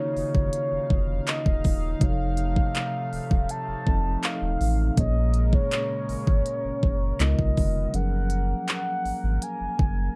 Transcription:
Already playing: analog synth pad C#3 D#4 F5, tine electric piano D#3 A#3 F4 F#4 C#5, soft synth lead C#5
0.16 sub bass F#1, open hi-hat
0.35 sub bass F#1, kick
0.53 closed hi-hat
0.72 sub bass F1
0.90 sub bass F1, kick
1.27 soft synth lead D#5, clap, closed hi-hat
1.46 sub bass D#1, kick
1.64 sub bass D#1, kick, open hi-hat
1.99 sub bass F1, tine electric piano C3 F3 D#4 F#4, analog synth pad C3 A3, soft synth lead F5, kick, closed hi-hat
2.03 tine electric piano C#5
2.09 tine electric piano A4
2.37 closed hi-hat
2.56 kick
2.75 clap, closed hi-hat
3.13 sub bass D#1, open hi-hat
3.31 sub bass D#1, kick
3.49 soft synth lead A5, closed hi-hat
3.68 sub bass F1
3.86 sub bass F1, tine electric piano F3 C4 D#4 A4 D#5, kick
4.23 soft synth lead F5, clap, closed hi-hat
4.42 sub bass D#1
4.60 sub bass A1, open hi-hat
4.96 sub bass A#1, tine electric piano A#2 A#3 C#4 G#4, analog synth pad C#3 G#3 C#4 A#4, soft synth lead D#5, kick, closed hi-hat
5.00 tine electric piano C#5
5.34 closed hi-hat
5.53 soft synth lead C#5, kick
5.72 clap, closed hi-hat
6.09 sub bass G#1, open hi-hat
6.27 sub bass G#1, kick
6.46 closed hi-hat
6.65 sub bass F#1
6.83 sub bass F#1, kick
7.19 sub bass C#2, tine electric piano C#3 G#3 B3 D#4 F4 A4, analog synth pad D#3 B3, soft synth lead D#5, clap, closed hi-hat
7.28 tine electric piano A#4
7.39 sub bass B1, kick
7.57 sub bass F1, kick, open hi-hat
7.92 sub bass F#1, tine electric piano F3 F#3 C#4 G#4, analog synth pad A#3, soft synth lead F#5, closed hi-hat
7.96 tine electric piano A#4
8.30 closed hi-hat
8.68 soft synth lead F#5, clap, closed hi-hat
9.05 sub bass G#1, open hi-hat
9.24 sub bass G#1
9.42 soft synth lead G#5, closed hi-hat
9.61 sub bass F#1
9.79 sub bass F#1, kick

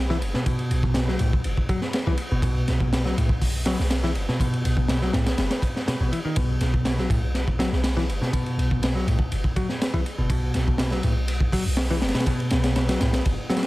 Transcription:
Already playing: 808-style bass B1
0.10 picked electric bass E3, snare
0.22 808-style bass F#1, ride
0.34 picked electric bass B2, snare
0.46 picked electric bass B2, kick, ride
0.59 ride
0.71 808-style bass B1, ride
0.83 kick
0.94 picked electric bass B2, snare, ride
1.08 picked electric bass F#3, snare
1.19 808-style bass B1, picked electric bass A2, ride
1.33 kick
1.44 808-style bass F#1, ride
1.57 kick
1.69 picked electric bass F#3, kick, ride
1.82 snare
1.93 snare, ride
2.07 808-style bass B1, picked electric bass E3
2.17 ride
2.31 808-style bass F#1, picked electric bass B2
2.42 808-style bass B1, picked electric bass B2, kick, ride
2.68 808-style bass B1, snare, ride
2.80 kick
2.93 picked electric bass B2, snare, ride
3.05 picked electric bass F#3, snare
3.17 808-style bass B1, picked electric bass A2, ride
3.29 kick
3.41 kick, open hi-hat
3.65 picked electric bass F#3, snare, ride
3.79 808-style bass B1, snare
3.90 snare, ride
4.03 picked electric bass E3, snare
4.15 808-style bass F#1, ride
4.29 picked electric bass B2, snare
4.40 picked electric bass B2, kick, ride
4.54 ride
4.65 808-style bass B1, ride
4.77 kick
4.88 picked electric bass B2, snare, ride
5.02 picked electric bass F#3, snare
5.13 808-style bass B1, picked electric bass A2, snare, ride
5.26 snare, ride
5.38 808-style bass F#1, snare, ride
5.50 snare, ride
5.62 kick, ride
5.76 snare
5.88 picked electric bass B2, snare, ride
6.00 808-style bass A1, picked electric bass B2
6.12 picked electric bass E3, ride
6.25 picked electric bass D#3
6.36 808-style bass B1, picked electric bass B2, kick, ride
6.61 808-style bass B1, snare, ride
6.74 kick
6.85 picked electric bass B2, snare, ride
6.98 picked electric bass F#3, snare
7.10 808-style bass B1, picked electric bass A2, kick, ride
7.34 snare, ride
7.48 kick
7.59 picked electric bass F#3, snare, ride
7.72 808-style bass B1, snare
7.84 snare, ride
7.97 picked electric bass E3, snare
8.09 808-style bass F#1, ride
8.21 picked electric bass B2, snare
8.33 picked electric bass B2, kick, ride
8.46 ride
8.58 808-style bass B1, ride
8.71 kick
8.82 picked electric bass B2, snare, ride
8.95 picked electric bass F#3, snare
9.07 808-style bass B1, picked electric bass A2, ride
9.19 kick
9.32 808-style bass F#1, ride
9.44 kick
9.56 picked electric bass F#3, kick, ride
9.69 snare
9.82 snare, ride
9.94 808-style bass B1, picked electric bass E3
10.06 ride
10.18 808-style bass F#1, picked electric bass B2
10.30 808-style bass B1, picked electric bass B2, kick, ride
10.54 808-style bass B1, snare, ride
10.68 kick
10.78 picked electric bass B2, snare, ride
10.91 picked electric bass F#3, snare
11.03 808-style bass B1, picked electric bass A2, ride
11.28 ride
11.40 kick
11.52 picked electric bass F#3, kick, open hi-hat
11.66 808-style bass B1
11.77 snare, ride
11.90 picked electric bass E3, snare
12.02 808-style bass F#1, snare, ride
12.09 snare, ride
12.15 picked electric bass B2, snare, ride
12.20 snare, ride
12.26 picked electric bass B2, kick, ride
12.40 ride
12.50 808-style bass B1, snare, ride
12.64 snare, ride
12.76 picked electric bass B2, snare, ride
12.89 picked electric bass F#3, snare, ride
13.01 808-style bass B1, picked electric bass A2, snare, ride
13.13 snare, ride
13.25 808-style bass F#1, kick, ride
13.49 picked electric bass F#3, snare, ride
13.57 snare, ride
13.63 snare, ride

